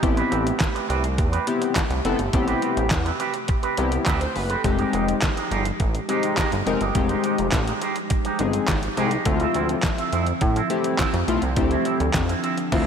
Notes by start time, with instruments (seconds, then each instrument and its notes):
Already playing: ambient pad G4
0.03 analog synth bass A1, ambient pad C3 A3, analog polysynth B3 C4 E4 G4, muted clean electric guitar stroke, kick, closed hi-hat
0.17 clean electric guitar C4 G4 B4, closed hi-hat
0.32 analog synth bass A1, clean electric guitar C4 G4 B4, closed hi-hat
0.46 muted clean electric guitar stroke, closed hi-hat
0.60 muted clean electric guitar stroke, kick, snare, clap, closed hi-hat
0.62 clap
0.74 clean electric guitar C4 G4 B4, closed hi-hat
0.89 analog synth bass C2, clean electric guitar C4 G4 B4, closed hi-hat
1.04 muted clean electric guitar stroke, closed hi-hat
1.18 analog synth bass E2, muted clean electric guitar stroke, kick, closed hi-hat
1.32 clean electric guitar C4 G4 B4, closed hi-hat
1.47 analog polysynth B3 C4 E4 G4, muted clean electric guitar stroke, closed hi-hat
1.62 muted clean electric guitar stroke, closed hi-hat
1.75 muted clean electric guitar stroke, kick, snare, clap, closed hi-hat
1.90 analog synth bass C2, muted clean electric guitar stroke, closed hi-hat
2.05 analog synth bass F#1, analog polysynth B3 C4 E4 A4, closed hi-hat
2.19 analog synth bass G1, muted clean electric guitar stroke, closed hi-hat
2.33 analog synth bass A1, analog polysynth B3 C4 E4 G4, muted clean electric guitar stroke, kick, closed hi-hat
2.47 clean electric guitar C4 G4 B4, closed hi-hat
2.62 clean electric guitar C4 G4 B4, closed hi-hat
2.76 analog synth bass A1, muted clean electric guitar stroke, closed hi-hat
2.90 analog synth bass E2, muted clean electric guitar stroke, kick, snare, clap, closed hi-hat
2.92 clap
3.05 clean electric guitar C4 G4 B4, closed hi-hat
3.19 clean electric guitar C4 G4 B4, closed hi-hat
3.34 muted clean electric guitar stroke, closed hi-hat
3.48 muted clean electric guitar stroke, kick, closed hi-hat
3.63 clean electric guitar C4 G4 B4, closed hi-hat
3.77 analog synth bass C2, analog polysynth B3 C4 E4 G4, muted clean electric guitar stroke, closed hi-hat
3.92 muted clean electric guitar stroke, closed hi-hat
4.05 analog synth bass D2, clean electric guitar C4 G4, kick, snare, clap, closed hi-hat
4.07 clean electric guitar B4, clap
4.21 analog polysynth C5, muted clean electric guitar stroke, closed hi-hat
4.35 analog synth bass F#1, analog polysynth B4, muted clean electric guitar stroke, open hi-hat
4.50 clean electric guitar C4 G4 B4, analog polysynth A4, closed hi-hat
4.64 analog synth bass F1, ambient pad F3 G#3 D#4, analog polysynth G#3 C4 D#4 G4, kick, closed hi-hat
4.78 clean electric guitar G#3 D#4 G4, closed hi-hat
4.93 analog synth bass F1, clean electric guitar G#3 D#4 G4, closed hi-hat
5.08 muted clean electric guitar stroke, closed hi-hat
5.21 muted clean electric guitar stroke, kick, snare, clap, closed hi-hat
5.23 clap
5.36 clean electric guitar G#3 D#4 G4, closed hi-hat
5.51 analog synth bass G1, clean electric guitar G#3 D#4 G4, closed hi-hat
5.65 muted clean electric guitar stroke, closed hi-hat
5.80 analog synth bass A1, muted clean electric guitar stroke, kick, closed hi-hat
5.94 muted clean electric guitar stroke, closed hi-hat
6.08 analog polysynth G#3 C4 D#4 G4, clean electric guitar G#3 D#4 G4, closed hi-hat
6.23 clean electric guitar G#3 D#4 G4, closed hi-hat
6.37 clean electric guitar G#3 D#4 G4, kick, snare, clap, closed hi-hat
6.52 analog synth bass G1, muted clean electric guitar stroke, closed hi-hat
6.66 analog synth bass F1, analog polysynth G#3 C4 D#4 A#4, muted clean electric guitar stroke, closed hi-hat
6.81 analog synth bass G1, clean electric guitar G#3 D#4 G4, closed hi-hat
6.95 analog synth bass F1, analog polysynth G#3 C4 D#4 G4, muted clean electric guitar stroke, kick, closed hi-hat
7.09 clean electric guitar G#3 D#4 G4, closed hi-hat
7.24 clean electric guitar G#3 D#4 G4, closed hi-hat
7.38 analog synth bass F1, closed hi-hat
7.51 analog synth bass A1, muted clean electric guitar stroke, kick, snare, clap, closed hi-hat
7.54 clap
7.67 clean electric guitar G#3 D#4 G4, closed hi-hat
7.82 clean electric guitar G#3 D#4 G4, closed hi-hat
7.96 muted clean electric guitar stroke, closed hi-hat
8.10 muted clean electric guitar stroke, kick, closed hi-hat
8.25 clean electric guitar G#3 D#4 G4, closed hi-hat
8.39 analog synth bass G1, analog polysynth G#3 C4 D#4 G#4, muted clean electric guitar stroke, closed hi-hat
8.53 muted clean electric guitar stroke, closed hi-hat
8.67 analog synth bass G#1, muted clean electric guitar stroke, kick, snare, clap, closed hi-hat
8.83 muted clean electric guitar stroke, closed hi-hat
8.97 analog synth bass C2, clean electric guitar G#3 D#4 G4, analog polysynth G#3 C4 D#4 G#4, closed hi-hat
9.11 clean electric guitar G#3 D#4 G4, closed hi-hat
9.25 analog synth bass D2, ambient pad D3 F3 C4 E5, analog polysynth A3 C4 E4 F4, muted clean electric guitar stroke, kick, closed hi-hat
9.40 clean electric guitar F3 C4 E4, closed hi-hat
9.54 analog synth bass D2, clean electric guitar F3 C4 E4, closed hi-hat
9.69 muted clean electric guitar stroke, closed hi-hat
9.82 muted clean electric guitar stroke, kick, snare, clap, closed hi-hat
9.85 clap
9.98 clean electric guitar F3 C4 E4, closed hi-hat
10.12 analog synth bass F2, clean electric guitar F3 C4 E4, closed hi-hat
10.27 muted clean electric guitar stroke, closed hi-hat
10.41 analog synth bass A2, muted clean electric guitar stroke, kick, closed hi-hat
10.56 clean electric guitar F3 C4 E4, closed hi-hat
10.70 analog polysynth A3 C4 E4 G4, muted clean electric guitar stroke, closed hi-hat
10.84 muted clean electric guitar stroke, closed hi-hat
10.98 clean electric guitar F3 C4, kick, snare, clap, closed hi-hat
11.00 clean electric guitar E4, clap
11.13 analog synth bass F2, muted clean electric guitar stroke, closed hi-hat
11.28 analog synth bass B1, analog polysynth A3 C4 E4 F4, muted clean electric guitar stroke, closed hi-hat
11.42 analog synth bass C2, clean electric guitar F3 C4 E4, closed hi-hat
11.56 analog synth bass D2, analog polysynth A3 C4 E4 G4, ambient pad D4, muted clean electric guitar stroke, kick, closed hi-hat
11.71 clean electric guitar F3 C4 E4, closed hi-hat
11.85 clean electric guitar F3 C4 E4, closed hi-hat
12.00 analog synth bass D2, muted clean electric guitar stroke, closed hi-hat
12.13 analog synth bass F2, muted clean electric guitar stroke, kick, snare, clap, closed hi-hat
12.15 clap
12.29 clean electric guitar F3 C4 E4, closed hi-hat
12.43 clean electric guitar F3 C4 E4, closed hi-hat
12.57 muted clean electric guitar stroke, closed hi-hat
12.72 analog synth bass D2, clean electric guitar F3 C4 E4, analog polysynth A3 C4 E4 F4, kick, snare, crash